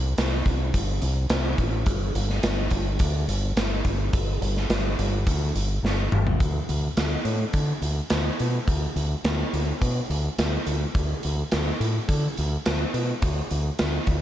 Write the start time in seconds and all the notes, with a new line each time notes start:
Already playing: C2
0.18 C2, snare, closed hi-hat, tambourine
0.46 C2, kick, closed hi-hat
0.74 G1, kick, closed hi-hat
1.02 C2, closed hi-hat
1.30 C2, snare, closed hi-hat, tambourine
1.58 A1, kick, closed hi-hat
1.86 G1, kick, closed hi-hat
2.15 G1, closed hi-hat
2.30 snare
2.43 G1, snare, closed hi-hat, tambourine
2.70 G1, kick, closed hi-hat
2.99 D2, kick, closed hi-hat
3.28 G1, closed hi-hat
3.56 G1, snare, closed hi-hat, tambourine
3.85 G1, kick, closed hi-hat
4.13 G1, kick, closed hi-hat
4.41 G1, closed hi-hat
4.57 snare
4.69 G1, snare, closed hi-hat, tambourine
4.99 G1, closed hi-hat
5.26 D2, kick, closed hi-hat
5.55 G1, closed hi-hat
5.83 G1, snare
6.12 G1, mid tom
6.27 floor tom
6.40 D2, kick, closed hi-hat
6.69 D2, closed hi-hat
6.97 D2, snare, closed hi-hat, tambourine
7.25 A2, closed hi-hat
7.53 D3, kick, closed hi-hat
7.82 D2, closed hi-hat
8.10 D2, snare, closed hi-hat, tambourine
8.39 B2, closed hi-hat
8.68 D2, kick, closed hi-hat
8.96 D2, closed hi-hat
9.24 D2, snare, closed hi-hat, tambourine
9.53 D2, closed hi-hat
9.82 B2, kick, closed hi-hat
10.10 D2, closed hi-hat
10.38 D2, snare, closed hi-hat, tambourine
10.66 D2, closed hi-hat
10.95 D2, kick, closed hi-hat
11.23 D2, closed hi-hat
11.52 D2, snare, closed hi-hat, tambourine
11.80 A2, closed hi-hat
12.09 D3, kick, closed hi-hat
12.37 D2, closed hi-hat
12.66 D2, snare, closed hi-hat, tambourine
12.94 B2, closed hi-hat
13.22 D2, kick, closed hi-hat
13.51 D2, closed hi-hat
13.79 D2, snare, closed hi-hat, tambourine
14.07 D2, kick, closed hi-hat